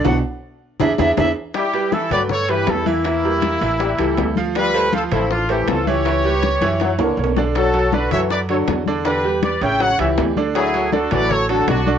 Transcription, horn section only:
1.56 E4 G4
1.93 E4 A4
2.13 B4 D5
2.32 A4 C#5
2.50 G4 B4
2.69 E4 A4
2.88 A#3 E4
4.57 F4 B4
4.95 F4 A4
5.13 C4 E4
5.31 D4 F4
5.51 E4 G4
5.69 F4 A4
5.88 G4 C#5
7.57 F#4 A4
7.94 F#4 B4
8.13 C#5 E5
8.31 B4 D5
8.50 A4 C#5
9.07 G4 B4
9.44 B4 D5
9.63 E5 G5
9.82 C#5 F#5
10.00 C#5 E5
10.56 E4 G#4
10.93 F#4 A4
11.13 B4 D5
11.31 A4 C#5
11.49 F#4 A4
11.68 D4 F#4

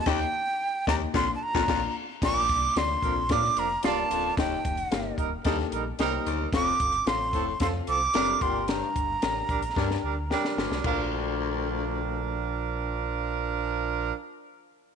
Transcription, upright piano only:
0.06 D#3 A#3 D#4 G4 D#5
0.87 A#3 D#4 G4 D#5
1.13 A#2 A#3 D4 F4 D5
1.55 A#3 D4 F4 D5
1.68 A#3 D4 F4 D5
2.23 A#2 A#3 D4 F4 D5
2.76 A#3 D4 F4 D5
3.29 A#3 D4 F4 D5
3.84 A#3 D4 F4 D5
4.38 D#3 A#3 D#4 G4 D#5
4.91 A#3 D#4 G4 A#4
5.46 A#3 D#4 G4 A4
5.99 A#3 D#4 G4 C5
6.53 C4 F4 A4 F5
7.06 C4 F4 A4 F5
7.60 C4 F4 A4 F5
8.14 C4 F4 A4 D5
8.42 G2 D4 G4 A#4 F#5
8.49 G5
9.22 D4 G4 A#4 A#5
9.76 D4 G4 A#4 G5
10.30 D4 G4 A#4 G5
10.82 A#1 D4 F4 A#4 F5

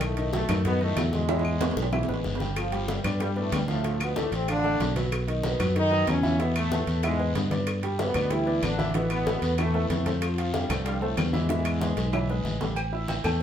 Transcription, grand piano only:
Already playing: D#3 D#4 D#5
0.17 D#3 D#4 D#5
0.33 F#3 F#4 A4
0.49 D#3 D#4 D#5
0.80 D#3 D#4 D#5
0.96 F#3 F#4 A4
1.29 E3 E4 E5
1.61 G#3 G#4 B4
1.92 E3 E4 E5
2.08 G#3 G#4 B4
2.40 G3 G4 G5
2.72 G3 G4 G5
3.04 B3 B4 D5
3.20 G3 G4 G5
3.36 B3 B4 D5
3.68 F3 F4 F5
3.84 F3 F4 F5
4.16 A3 A4 D5
4.48 F3 F4 F5
4.64 A3 A4 D5
4.95 F#3 F#4 B4
5.27 D#3 D#4 D#5
5.59 F#3 F#4 B4
5.75 D#3 D#4 D#5
5.91 F#3 F#4 B4
6.23 E3 E4 E5
6.39 E3 E4 E5
6.72 A3 A4 B4
7.04 E3 E4 E5
7.19 G#3 G#4 B4
7.51 B3 B4 D5
7.83 G3 G4 G5
8.15 B3 B4 D5
8.31 G3 G4 G5
8.46 B3 B4 D5
8.78 E3 E4 E5
8.95 E3 E4 E5
9.26 A3 A4 B4
9.58 E3 E4 E5
9.74 A3 A4 B4
10.06 A3 A4 C5
10.38 F3 F4 F5
10.70 A3 A4 C5
10.86 F3 F4 F5
11.02 A3 A4 C5
11.33 E3 E4 E5
11.50 E3 E4 E5
11.82 G#3 G#4 B4
12.14 E3 E4 E5
12.29 G#3 G#4 B4
12.61 G3 G4 A4
12.93 E4 E5 E6
13.24 A3 A4 A5

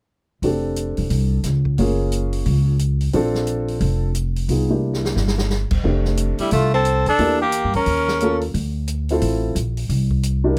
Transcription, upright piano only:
0.43 C4 D4 G4 A4
1.78 A#3 C#4 F4 G#4
3.13 C4 D4 F4 A4
4.49 B3 D#4 F4 G#4
4.69 A#3 D4 E4 G4
5.84 A3 C4 D4 G4
7.18 A#3 D4 E4 G4
8.21 A#3 C#4 F4 A4
9.10 C4 E4 F4 A4
10.44 D4 E4 G4 A#4

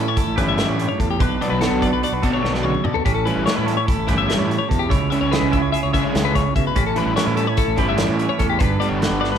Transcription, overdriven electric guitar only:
0.37 E3 G3 C#4 E4
0.58 E3 G3 C#4 E4
1.41 B2 F#3 B3 D4
1.61 B2 F#3 B3 D4
2.23 B2 F#3 B3 D4
2.43 B2 F#3 B3 D4
3.26 E3 G3 C#4 E4
3.47 E3 G3 C#4 E4
4.07 E3 G3 C#4 E4
4.29 E3 G3 C#4 E4
5.11 C#3 G#3 C#4 E4
5.32 C#3 G#3 C#4 E4
5.93 C#3 G#3 C#4 E4
6.14 C#3 G#3 C#4 E4
6.96 E3 G3 C#4 E4
7.16 E3 G3 C#4 E4
7.77 E3 G3 C#4 E4
7.98 E3 G3 C#4 E4
8.80 D3 G3 B3 D4
9.01 D3 G3 B3 D4

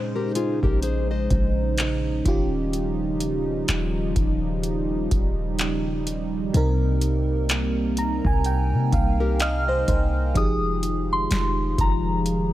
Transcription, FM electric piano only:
Already playing: A#2 G#3 C#4 D#4 C5
2.25 D#3 C#4 F4 G4
6.53 C3 C4 D#4 A#4
7.98 A#5
8.26 G#5
8.46 G5
8.94 F5
9.41 D#5
9.69 C5
9.89 C5
10.34 F3 D#4 G4 G#4

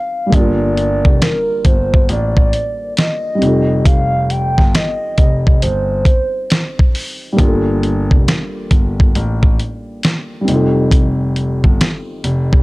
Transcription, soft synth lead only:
Already playing: F5
0.34 D5
1.22 A#4
1.66 C5
2.10 D5
2.98 D#5
3.86 F5
4.30 G5
4.74 D#5
5.62 C5

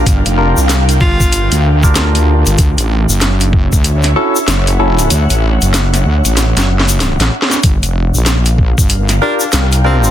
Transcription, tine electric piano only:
0.38 D4 F4 G4 A#4
1.83 D4 F4 G4 A#4
4.16 C#4 E4 F#4 A4
4.79 C#4 E4 F#4 A4
9.22 D4 F4 G4 A#4
9.84 D4 F4 G4 A#4

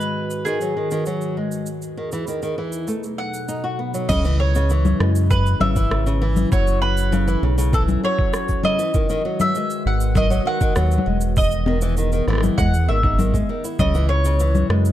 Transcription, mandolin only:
Already playing: B4
0.45 G#4
3.18 F#5
4.09 D#5
4.40 C#5
5.30 B4
5.61 E5
6.52 C#5
6.82 B4
7.74 A4
8.05 C#5
8.65 D#5
9.41 E5
9.87 F#5
10.17 D#5
10.47 F#5
11.38 D#5
12.58 F#5
12.89 E5
13.80 D#5
14.09 C#5

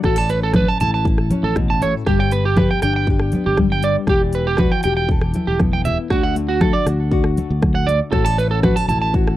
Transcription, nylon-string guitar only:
Already playing: A3
0.03 A2 F#4
0.16 A4
0.30 C#4
0.55 A4
0.81 E4
1.07 muted nylon-string guitar stroke
1.31 C#4
1.56 B2
1.82 A2
2.07 G2 G4
2.32 B3
2.59 G4
2.84 D4
3.10 G4
3.35 B3
3.59 G3
3.84 B3
4.09 E3 G4
4.36 E4
4.60 F#4
4.85 G4
5.11 A4
5.34 E4
5.60 B3
5.86 E4
6.12 D3 F#4
6.35 A3
6.61 F#4
6.87 D4
7.12 F#4
7.38 A3
7.88 A3
8.12 A2 F#4
8.26 A4
8.39 C#4
8.64 F#4
8.77 A4
8.90 E4
9.15 F#4

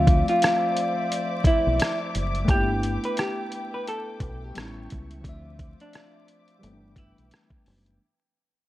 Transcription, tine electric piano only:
Already playing: F3 A3 C4 E5
2.45 A3 A#3
2.50 D4 E4
2.54 B3
4.55 G3 B3 C#4 D#4
4.65 E4
5.21 F3 A3
5.26 C4 E5
6.59 E3 G3 A3
6.65 B3 C4
6.73 D4

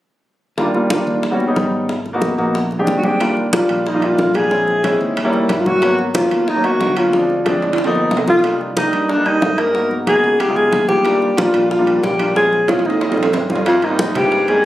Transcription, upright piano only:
0.57 G3 A#3 D4 F4
0.74 G3 A#3 D4 F4
0.90 G3 A#3 D4 F4
1.31 G3 B3 C#4 F#4
1.47 G3 B3 C#4 D#4
2.13 A#3 B3 D#4 F#4
2.38 A#3 B3 D#4 F#4
2.79 G#3 C4 D4 G4
3.03 G#3 C4 D4 G4
3.19 G3 A#3 D4 F4
3.52 G3 A#3 D4 F4
3.93 G3 A#3 D4 F4
4.34 G3 A#3 D4 F4
4.50 G#3 C4 C#4 E4
4.83 G#3 C4 C#4 E4
5.24 G3 A#3 C#4 E4
5.65 G3 A#3 C#4 E4
5.82 F#3 A#3 B3 C#4
6.14 F#3 A#3 B3 C#4
6.55 F#3 A#3 B3 C#4
6.96 F#3 A#3 B3 C#4
7.13 F3 G#3 C4 D4
7.45 F3 G#3 C4 D4
7.86 F3 A#3 B3 D#4
8.27 F3 A#3 B3 D#4
8.43 G3 A#3 D4 D#4
8.77 G3 A#3 D4 D#4
9.16 G3 A#3 D4 D#4
9.58 G3 A#3 D4 D#4
9.74 A#3 B3 D#4 F#4
10.06 A#3 B3 D#4 F#4
10.47 G#3 B3 D#4 F4
10.88 G#3 B3 D#4 F4
11.04 G3 A#3 D4 F4
11.37 G3 A#3 D4 F4
11.78 G3 A#3 D4 F4
12.18 G3 A#3 D4 F4
12.35 G#3 C4 C#4 F4
12.68 G#3 C4 C#4 F4
13.09 G3 C4 C#4 F4
13.50 G3 C4 C#4 F4
13.82 G3 A#3 C4 D#4
14.15 G3 A#3 C4 F4
14.48 G3 A#3 C4 D#4

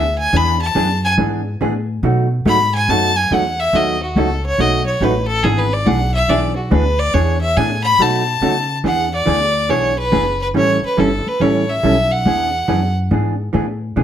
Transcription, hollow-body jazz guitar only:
0.33 E3 B3 D4 G#4
0.75 E3 B3 D4 G#4
1.18 E3 B3 D4 G#4
1.61 E3 B3 D4 G#4
2.03 B2 F#3 A3 D#4 F#4
2.46 B2 F#3 A3 D#4 F#4
2.89 B2 F#3 A3 D#4 F#4
3.32 B2 F#3 A3 D#4 F#4
3.73 B2 F#3 A3 D#4 F#4
4.17 B2 F#3 A3 D#4 F#4
4.59 B2 F#3 A3 D#4 F#4
5.01 B2 F#3 A3 D#4 F#4
5.44 E3 B3 D4 G#4
5.86 E3 B3 D4 G#4
6.29 E3 B3 D4 G#4
6.71 E3 B3 D4 G#4
7.14 E3 B3 D4 G#4
7.57 E3 B3 D4 G#4
8.00 B2 F#3 A3 D#4 F#4
8.42 B2 F#3 A3 D#4 F#4
8.84 E3 B3 D4 G#4
9.26 E3 B3 D4 G#4
9.69 E3 B3 D4 G#4
10.12 E3 B3 D4 G#4
10.54 E3 G3 C#4 E4 A4
10.97 E3 G3 C#4 E4 A4
11.40 E3 G3 C#4 E4 A4
11.83 E3 G3 C#4 E4 A4
12.26 E3 B3 D4 G#4
12.68 E3 B3 D4 G#4
13.11 E3 B3 D4 G#4
13.53 E3 B3 D4 G#4
13.96 E3 B3 D4 G#4

